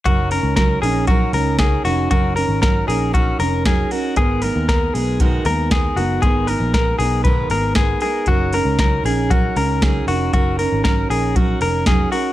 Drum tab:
HH |xoxoxoxo|xoxoxoxo|xoxoxoxo|xoxoxoxo|
SD |--o---o-|--o---o-|--o---o-|--o---o-|
BD |o-o-o-o-|o-o-o-o-|o-o-o-o-|o-o-o-o-|

HH |xoxoxoxo|xoxoxoxo|
SD |--o---o-|--o---o-|
BD |o-o-o-o-|o-o-o-o-|